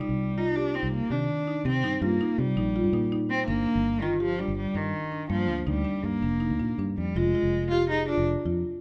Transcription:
Already playing: cello G3
0.01 marimba D#4
0.09 fingered electric bass C2
0.38 cello D#4, marimba F4
0.55 cello D4, marimba G4
0.74 cello C4, marimba D#4
0.83 fingered electric bass C2
0.93 cello A#3
1.10 fingered electric bass C3, marimba D#3, cello D4
1.47 marimba D#4
1.65 fingered electric bass C3, marimba C4, cello C4
1.84 fingered electric bass G2, marimba D#4
2.02 fingered electric bass G2, cello A#3, marimba F4
2.21 marimba D#4
2.38 fingered electric bass C3, cello G3
2.56 fingered electric bass A#1, marimba D#4
2.76 marimba F4
2.84 fingered electric bass G2
2.93 fingered electric bass A#2, marimba D#4
3.12 marimba D#4
3.30 cello C4
3.47 fingered electric bass G1, cello A#3, marimba D4
3.66 marimba D4
3.75 fingered electric bass G1
4.02 cello D#3, marimba F4
4.20 cello F3, marimba G4
4.39 cello G3, marimba D4
4.48 fingered electric bass G1
4.58 cello G3
4.75 fingered electric bass G2, cello D#3, marimba D4
5.12 marimba D4
5.30 fingered electric bass G2, cello F3, marimba A#3
5.48 fingered electric bass D2, marimba D4
5.67 fingered electric bass D2, cello G3, marimba D#4
5.85 marimba D4
6.03 fingered electric bass G2, cello A#3
6.22 fingered electric bass F1, marimba D4
6.40 marimba D#4
6.50 fingered electric bass D2
6.59 fingered electric bass A#2, marimba D4
6.78 fingered electric bass G2, marimba D4
6.98 fingered electric bass F2, cello G3
7.15 fingered electric bass F1, cello G#3, marimba F4
7.35 marimba F4
7.43 fingered electric bass F1
7.70 cello F4, marimba G4
7.90 cello D#4, marimba G#4
8.08 cello D4, marimba F4
8.17 fingered electric bass F1
8.45 fingered electric bass F2, marimba F4

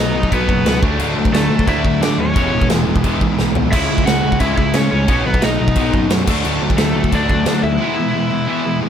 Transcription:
Already playing: distorted electric guitar B2 F#3 B3 D#4, overdriven electric guitar D#4 D#5
0.00 picked electric bass B1
0.14 picked electric bass B1, distorted electric guitar B2 F#3
0.23 kick
0.31 picked electric bass B1, distorted electric guitar B2 F#3 B3, overdriven electric guitar B3 B4, kick, crash
0.48 picked electric bass F#1, distorted electric guitar B2 F#3, kick
0.65 picked electric bass C#2, distorted electric guitar B2 F#3, snare, crash
0.82 picked electric bass D2, distorted electric guitar D3 F#3 A3 D4, kick
0.99 picked electric bass D2, distorted electric guitar D3 F#3 A3 D4, crash
1.16 picked electric bass D2, distorted electric guitar D3 F#3 A3
1.25 kick
1.32 picked electric bass D2, distorted electric guitar D3 F#3 A3, overdriven electric guitar A3 A4, snare, crash
1.49 picked electric bass D2, distorted electric guitar D3 F#3 A3
1.59 kick
1.67 picked electric bass D2, distorted electric guitar D3 F#3 A3 D4, overdriven electric guitar E4 E5, kick, crash
1.83 picked electric bass D2, distorted electric guitar D3 A3, kick
1.87 distorted electric guitar F#3
2.01 picked electric bass D3, distorted electric guitar D3 F#3 A3, overdriven electric guitar D4 D5, snare, crash
2.18 picked electric bass D#2, distorted electric guitar D3 F#3 A3, overdriven electric guitar C#4 C#5
2.34 picked electric bass E1, distorted electric guitar E2 B2 E3 G#3 B3 E4, kick, crash
2.53 picked electric bass E1, distorted electric guitar E2 B2 E3 G#3
2.61 kick
2.69 picked electric bass E1, distorted electric guitar E2 B2 E3 G#3, snare, crash
2.86 picked electric bass E1, distorted electric guitar E2 B2 E3 G#3
2.96 kick
3.04 picked electric bass E1, distorted electric guitar E2 B2 E3 G#3 B3, kick, crash
3.21 picked electric bass B1, distorted electric guitar E2 B2 E3 G#3, kick
3.38 picked electric bass B1, distorted electric guitar E2 B2 E3 G#3, snare
3.55 distorted electric guitar E2 B2 E3 G#3, floor tom
3.72 picked electric bass C#2, distorted electric guitar C#3 G#3 C#4 E4, overdriven electric guitar E4 E5, kick, crash
3.89 picked electric bass C#2, distorted electric guitar C#3 G#3
3.98 kick
4.05 picked electric bass C#2, distorted electric guitar C#3 G#3, overdriven electric guitar F#4 F#5, snare, crash
4.24 picked electric bass C#2, distorted electric guitar C#3 G#3
4.32 kick
4.40 picked electric bass C#2, distorted electric guitar C#3 G#3 C#4, overdriven electric guitar E4 E5, kick, crash
4.57 picked electric bass C#2, distorted electric guitar C#3 G#3, overdriven electric guitar E4 E5, kick
4.74 picked electric bass C#3, distorted electric guitar C#3 G#3, overdriven electric guitar C#4 C#5, snare, crash
4.91 picked electric bass C#2, distorted electric guitar C#3 G#3, overdriven electric guitar C#4 C#5
5.07 picked electric bass B1, distorted electric guitar B2 F#3 B3 D#4, kick, crash
5.25 picked electric bass B1, distorted electric guitar B2 F#3, overdriven electric guitar B3 B4
5.34 kick
5.41 picked electric bass B1, distorted electric guitar B2 F#3, overdriven electric guitar D#4 D#5, snare, crash
5.59 picked electric bass B1, distorted electric guitar B2 F#3
5.68 kick
5.76 picked electric bass B1, distorted electric guitar B2 F#3 B3, kick, crash
5.93 picked electric bass F#1, distorted electric guitar B2 F#3, kick
6.09 picked electric bass F#2, distorted electric guitar B2 F#3, snare, crash
6.26 picked electric bass D2, distorted electric guitar D3 F#3 A3 D4, kick, crash
6.44 picked electric bass D2, distorted electric guitar D3 F#3 A3 D4, crash
6.61 picked electric bass D2, distorted electric guitar D3 F#3 A3
6.70 kick
6.78 picked electric bass D2, distorted electric guitar D3 F#3 A3, overdriven electric guitar A3 A4, snare, crash
6.95 picked electric bass D2, distorted electric guitar D3 F#3 A3
7.04 kick
7.12 picked electric bass D2, distorted electric guitar D3 F#3 A3 D4, overdriven electric guitar D4 D5, kick, crash
7.29 picked electric bass D2, distorted electric guitar D3 F#3 A3, kick
7.46 picked electric bass D3, distorted electric guitar D3 F#3 A3, snare, crash
7.63 picked electric bass D2, distorted electric guitar D3 F#3 A3, overdriven electric guitar E4 E5
7.80 distorted electric guitar E2 B2 E3 G#3 B3 E4
7.98 distorted electric guitar E2 B2 E3 G#3
8.14 distorted electric guitar E2 B2 E3 G#3
8.31 distorted electric guitar E2 B2 E3 G#3
8.47 distorted electric guitar E2 B2 E3 G#3 B3
8.64 distorted electric guitar E2 B2 E3 G#3
8.81 distorted electric guitar E2 B2 E3 G#3

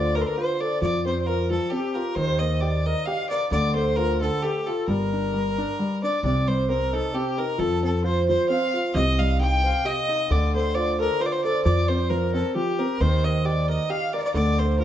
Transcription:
Already playing: upright bass D2, grand piano D3 F4, hammered dulcimer C5 D5 F5 G5, fiddle D5, flute D5
0.15 grand piano A4, hammered dulcimer A#4, fiddle A#4, flute A#4
0.21 fiddle C5
0.26 hammered dulcimer A#4, fiddle A#4, flute A#4
0.36 grand piano F4, fiddle C5, hammered dulcimer C5, flute C5
0.60 grand piano A4, hammered dulcimer D5, fiddle D5, flute D5
0.81 upright bass F2, grand piano F3, fiddle D5, hammered dulcimer D5, flute D5
1.06 grand piano C4, flute C5, fiddle C5, hammered dulcimer C5
1.21 fiddle C5
1.26 grand piano F4, fiddle A#4, hammered dulcimer A#4, flute A#4
1.50 grand piano F3, fiddle A4, hammered dulcimer A4
1.70 grand piano C4, fiddle G4, hammered dulcimer G4, flute G4
1.94 grand piano F4, fiddle A#4, hammered dulcimer A#4
2.15 upright bass D#2, grand piano D#3, fiddle C5, hammered dulcimer C5, flute C5
2.39 grand piano A#3, fiddle D#5, hammered dulcimer D#5, flute D#5
2.61 grand piano G4, fiddle D5, hammered dulcimer D5, flute D5
2.67 hammered dulcimer D5
2.74 hammered dulcimer D5
2.86 grand piano A#4, hammered dulcimer D#5, fiddle D#5, flute D#5
3.06 grand piano G4, fiddle F5, hammered dulcimer F5, flute F5
3.29 grand piano A#4, fiddle D5, flute D5, hammered dulcimer D5
3.51 upright bass D2, grand piano D3, fiddle D5, flute D5, hammered dulcimer D5
3.75 grand piano A3, fiddle C5, flute C5, hammered dulcimer C5
3.96 grand piano F4, fiddle A#4, hammered dulcimer A#4, flute A#4
4.21 grand piano D3, hammered dulcimer A4, fiddle A4, flute A4
4.41 grand piano A3, hammered dulcimer G4, flute G4, fiddle G4
4.66 grand piano F4, hammered dulcimer A4, flute A4, fiddle A4
4.87 upright bass G1, grand piano G3, flute A#4, hammered dulcimer A#4, fiddle A#4
5.13 grand piano D4
5.34 grand piano G3
5.58 grand piano D4
5.79 grand piano G3
6.02 grand piano D4, flute D5, hammered dulcimer D5, fiddle D5
6.23 upright bass C2, grand piano C3, flute D5, hammered dulcimer D5, fiddle D5
6.47 grand piano G3, flute C5, hammered dulcimer C5, fiddle C5
6.69 grand piano C4, flute A#4, hammered dulcimer A#4, fiddle A#4
6.93 grand piano D#4, hammered dulcimer A4, flute A4, fiddle A4
7.14 grand piano C4, flute G4, hammered dulcimer G4, fiddle G4
7.38 grand piano D#4, flute A#4, fiddle A#4, hammered dulcimer A#4
7.58 upright bass F2, grand piano F3, fiddle A4, flute A4, hammered dulcimer A4
7.66 hammered dulcimer A4
7.72 hammered dulcimer A4
7.83 grand piano C4, flute A4, fiddle A4, hammered dulcimer A4
8.04 grand piano F4, fiddle C5, flute C5, hammered dulcimer C5
8.12 hammered dulcimer C5
8.17 hammered dulcimer C5
8.28 grand piano F3, fiddle C5, flute C5, hammered dulcimer C5
8.49 grand piano C4, fiddle F5, flute F5, hammered dulcimer F5
8.74 grand piano F4
8.94 upright bass C2, grand piano C3, fiddle D#5, flute D#5, hammered dulcimer D#5
9.19 grand piano G3, fiddle F5, hammered dulcimer F5, flute F5
9.39 grand piano D#4, flute G5, fiddle G5, hammered dulcimer G5
9.47 hammered dulcimer G5
9.53 hammered dulcimer G5
9.64 grand piano C5, flute F5, hammered dulcimer F5
9.85 grand piano G4, flute D#5, hammered dulcimer D#5, fiddle D#5
10.09 grand piano D#4
10.30 upright bass D2, grand piano D3, hammered dulcimer D5, flute D5, fiddle D5
10.54 grand piano A3, flute C5, fiddle C5, hammered dulcimer C5
10.75 grand piano F4, fiddle D5, hammered dulcimer D5, flute D5
10.99 grand piano A4, flute A#4, hammered dulcimer A#4, fiddle A#4
11.20 grand piano F4, flute C5, hammered dulcimer C5, fiddle C5
11.26 fiddle D5
11.31 flute C5, hammered dulcimer C5, fiddle C5
11.43 grand piano A4, flute D5, hammered dulcimer D5, fiddle D5
11.49 hammered dulcimer D5
11.55 hammered dulcimer D5
11.65 upright bass F2, grand piano F3, flute D5, fiddle D5, hammered dulcimer D5
11.88 grand piano C4, fiddle C5, flute C5, hammered dulcimer C5
12.10 grand piano F3, fiddle A#4, flute A#4, hammered dulcimer A#4
12.34 grand piano C4, fiddle A4, hammered dulcimer A4
12.55 grand piano F3, flute G4, fiddle G4, hammered dulcimer G4
12.79 grand piano C4, hammered dulcimer A#4, fiddle A#4
13.00 upright bass D#2, grand piano D#3, hammered dulcimer C5, flute C5, fiddle C5
13.24 grand piano A#3, hammered dulcimer D#5, fiddle D#5
13.45 grand piano G4, flute D5, hammered dulcimer D5, fiddle D5
13.69 grand piano A#4, fiddle D#5, hammered dulcimer D#5
13.90 grand piano G4, hammered dulcimer F5, flute F5, fiddle F5
14.13 grand piano A#4, fiddle D5, hammered dulcimer D5, flute D5
14.20 fiddle D5
14.24 fiddle D5, hammered dulcimer D5, flute D5
14.34 upright bass D2, grand piano D3, fiddle D5, hammered dulcimer D5, flute D5
14.58 grand piano A3, hammered dulcimer C5, flute C5, fiddle C5
14.79 grand piano F4, fiddle A#4, hammered dulcimer A#4, flute A#4

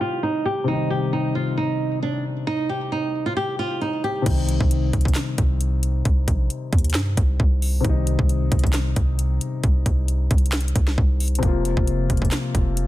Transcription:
Already playing: grand piano C3 D#3 G3 D#4
0.01 nylon-string guitar F4
0.23 nylon-string guitar D#4
0.45 nylon-string guitar G4
0.64 grand piano C3 D#3, nylon-string guitar D#4
0.70 grand piano G3 D#4
0.90 nylon-string guitar G4
1.13 nylon-string guitar D#4
1.35 nylon-string guitar F4
1.57 nylon-string guitar D#4
2.02 nylon-string guitar D4
2.47 nylon-string guitar D#4
2.69 nylon-string guitar G4
2.92 nylon-string guitar D#4
3.26 nylon-string guitar F4
3.37 nylon-string guitar G4
3.59 nylon-string guitar F4
3.81 nylon-string guitar D#4
4.04 nylon-string guitar G4
4.22 grand piano C3 D#3
4.26 808-style bass C2, grand piano G3, kick, closed hi-hat, crash
4.31 grand piano D#4
4.49 closed hi-hat
4.61 808-style bass C2, kick
4.71 closed hi-hat
4.93 808-style bass C2, kick, closed hi-hat
5.01 closed hi-hat
5.05 kick, closed hi-hat
5.15 snare, clap, closed hi-hat
5.38 808-style bass C2, kick, closed hi-hat
5.61 closed hi-hat
5.83 closed hi-hat
6.05 808-style bass C2, kick, closed hi-hat
6.28 808-style bass A#1, kick, closed hi-hat
6.50 closed hi-hat
6.73 808-style bass D#2, kick, closed hi-hat
6.78 closed hi-hat
6.84 closed hi-hat
6.90 closed hi-hat
6.94 808-style bass G2, snare, clap, closed hi-hat
7.17 808-style bass C2, kick, closed hi-hat
7.40 808-style bass C2, kick
7.62 open hi-hat
7.80 grand piano C3 D#3
7.85 808-style bass C2, grand piano G3, kick, closed hi-hat
7.89 grand piano D#4
8.07 closed hi-hat
8.19 808-style bass C2, kick
8.29 closed hi-hat
8.52 808-style bass C2, kick, closed hi-hat
8.59 closed hi-hat
8.64 kick, closed hi-hat
8.73 snare, clap, closed hi-hat
8.96 808-style bass C2, kick, closed hi-hat
9.19 closed hi-hat
9.41 closed hi-hat
9.64 808-style bass C2, kick, closed hi-hat
9.86 808-style bass C2, kick, closed hi-hat
10.08 closed hi-hat
10.31 808-style bass C2, kick, closed hi-hat
10.38 closed hi-hat
10.46 closed hi-hat
10.52 snare, clap, closed hi-hat
10.61 closed hi-hat
10.68 closed hi-hat
10.76 808-style bass C2, kick, closed hi-hat
10.87 snare
10.98 808-style bass C2, kick
11.20 closed hi-hat, open hi-hat
11.28 closed hi-hat
11.35 grand piano C3, closed hi-hat
11.41 808-style bass F1, grand piano F3 A#3, kick, closed hi-hat
11.47 grand piano F4
11.65 closed hi-hat
11.77 808-style bass F1, kick
11.87 closed hi-hat
12.10 808-style bass F1, kick, closed hi-hat
12.17 closed hi-hat
12.22 kick, closed hi-hat
12.31 snare, clap, closed hi-hat
12.55 808-style bass F1, kick, closed hi-hat
12.77 closed hi-hat

